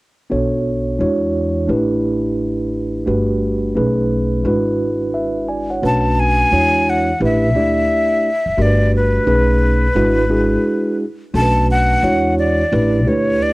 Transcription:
0.30 upright bass B1, tine electric piano B3 D4 F#4 A4 C#5
0.99 upright bass E2, tine electric piano G#3 D4 E4 F#4 C#5
1.67 upright bass A1, tine electric piano A3 D4 E4 G4 B4
3.06 upright bass G1, tine electric piano A3 D4 F#4 G4 B4
3.75 upright bass B1, tine electric piano A3 C#4 D#4 G#4 B4
4.44 upright bass G#1, tine electric piano G#3 D4 E4 F#4 B4
5.14 tine electric piano B4 E5
5.49 tine electric piano D5 G#5
5.70 tine electric piano C#5 F#5
5.82 upright bass B1, tine electric piano A3 C#4 D4 F#4 B4, flute A5
6.20 flute G#5
6.51 upright bass E2, tine electric piano G#3 D4 E4 F#4 C#5
6.90 flute F#5
7.20 upright bass A1, tine electric piano A3 D4 E4 G4 B4
7.24 flute E5
7.55 upright bass D2, tine electric piano A3 D4 E4 G4 D5
8.46 upright bass F#1
8.57 upright bass G1, tine electric piano A3 D4 F#4 G4 A#4
8.62 tine electric piano B4, flute D5
8.96 flute B4
9.26 upright bass B1, tine electric piano A3 C#4 D#4 G#4 B4
9.95 upright bass G#1, tine electric piano G#3 D4 E4 F#4 B4
10.29 tine electric piano G#3 D4 E4 F#4 G#4
11.34 upright bass B1, tine electric piano A3 C#4 D4 F#4 A4, flute A5
11.42 tine electric piano B4
11.71 flute F#5
12.03 upright bass E2, tine electric piano G#3 D4 E4 F#4 C#5
12.39 flute D5
12.72 upright bass A1, tine electric piano A3 D4 E4 G4 B4
13.05 upright bass D2, tine electric piano A3 D4 E4 G4 B4, flute C#5
13.42 flute D5

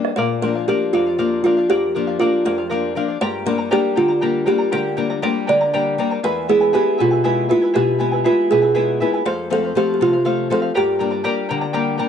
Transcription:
Already playing: nylon-string guitar G3 A#3 D4
0.05 bombo rim
0.16 nylon-string guitar A#2, charango A#4 D5 F5, kalimba C5
0.42 nylon-string guitar F3 A#3 D4, charango A#4 D5 F5, kalimba A#4
0.55 charango D5 F5
0.68 nylon-string guitar F3 A#3 D4, kalimba G4, charango A#4 D5 F5
0.93 nylon-string guitar F2, kalimba F4, charango A#4 D5 F5
1.07 charango D5 F5
1.18 nylon-string guitar F3 A#3 D4, charango A#4 D5 F5
1.44 nylon-string guitar F3 A#3 D4, kalimba F4, charango A#4 D5 F5
1.57 charango D5 F5
1.69 nylon-string guitar F2, kalimba G4, charango A#4 D5 F5
1.95 nylon-string guitar F3 A#3 D4, charango A#4 D5 F5
2.07 charango D5 F5
2.19 nylon-string guitar F3 A#3 D4, kalimba F4, charango A#4 D5 F5
2.45 nylon-string guitar F2, charango A#4 D5 F5, kalimba A#4
2.58 charango D5 F5
2.70 nylon-string guitar F3 A#3 D4, charango A#4 D5 F5
2.95 nylon-string guitar F3 A#3 D4, charango A#4 D5 F5
3.08 charango D5 F5
3.21 nylon-string guitar G2, charango G4 A#4 D5 G5 A#5, kalimba C5
3.46 nylon-string guitar G3 A#3 D4, charango A#4 D5 G5 A#5, kalimba A#4
3.58 charango A#4 D5 A#5
3.71 nylon-string guitar G3 A#3 D4, charango G4 A#4 D5 G5 A#5, kalimba G4
3.96 nylon-string guitar D3, kalimba F4, charango A#4 D5 G5 A#5
4.08 charango A#4 D5 A#5
4.21 nylon-string guitar G3 A#3 D4, charango G4 A#4 D5 G5 A#5
4.46 nylon-string guitar G3 A#3 D4, kalimba G4, charango A#4 D5 G5 A#5
4.58 charango A#4 D5 A#5
4.72 nylon-string guitar D3, charango G4 A#4 D5 G5 A#5, kalimba A#4
4.97 nylon-string guitar G3 A#3 D4, charango A#4 D5 G5 A#5
5.10 charango A#4 D5 A#5
5.22 nylon-string guitar G3 A#3 D4, charango G4 A#4 D5 G5 A#5, kalimba C5
5.47 nylon-string guitar D3, charango A#4 D5 G5 A#5, kalimba D5
5.61 charango A#4 D5 A#5
5.73 nylon-string guitar G3 A#3 D4, charango G4 A#4 D5 G5 A#5
5.98 nylon-string guitar G3 A#3 D4, charango A#4 D5 G5 A#5
6.11 charango A#4 D5 A#5
6.23 nylon-string guitar E2, charango E4 G#4 B4 E5 G#5, kalimba A#4
6.48 nylon-string guitar G#3 B3 E4, charango E4 B4 E5 G#5, kalimba G#4
6.60 charango E4 B4 G#5
6.73 nylon-string guitar G#3 B3 E4, charango E4 G#4 B4 E5 G#5, kalimba G4
6.98 nylon-string guitar B2, charango E4 B4 E5 G#5, kalimba F4
7.11 charango E4 B4 G#5
7.24 nylon-string guitar G#3 B3 E4, charango E4 G#4 B4 E5 G#5
7.49 nylon-string guitar G#3 B3 E4, charango E4 B4 E5 G#5, kalimba F4
7.61 charango E4 B4 G#5
7.74 nylon-string guitar B2, charango E4 G#4 B4 E5 G#5, kalimba G4
7.98 nylon-string guitar G#3 B3 E4, charango E4 B4 E5 G#5
8.12 charango E4 B4 G#5
8.24 nylon-string guitar G#3 B3 E4, charango E4 G#4 B4 E5 G#5, kalimba F4
8.50 nylon-string guitar B2, charango E4 B4 E5 G#5, kalimba G#4
8.62 charango E4 B4 G#5
8.74 nylon-string guitar G#3 B3 E4, charango E4 G#4 B4 E5 G#5
9.00 nylon-string guitar G#3 B3 E4, charango E4 B4 E5 G#5
9.13 charango E4 B4 G#5
9.25 nylon-string guitar F2, charango A4 C5 F5, kalimba C5
9.50 nylon-string guitar F3 A3 C4, charango A4 C5 F5, kalimba A4
9.64 charango C5 F5
9.75 nylon-string guitar F3 A3 C4, kalimba G4, charango A4 C5 F5
9.94 kalimba G4
10.00 nylon-string guitar C3, kalimba F4, charango A4 C5 F5
10.13 charango C5 F5
10.25 nylon-string guitar F3 A3 C4, charango A4 C5 F5
10.50 nylon-string guitar F3 A3 C4, charango A4 C5 F5, kalimba A4
10.62 charango C5 F5
10.74 nylon-string guitar G2, charango G4 A#4 D5 G5 A#5, kalimba G4
10.99 nylon-string guitar G3 A#3 D4, charango A#4 D5 G5 A#5
11.11 charango A#4 D5 A#5
11.24 nylon-string guitar G3 A#3 D4, charango G4 A#4 D5 G5 A#5
11.49 nylon-string guitar D3, charango A#4 D5 G5 A#5
11.61 charango A#4 D5 A#5
11.73 nylon-string guitar G3 A#3 D4, charango G4 A#4 D5 G5 A#5
11.98 nylon-string guitar G3 A#3 D4, charango A#4 D5 G5 A#5

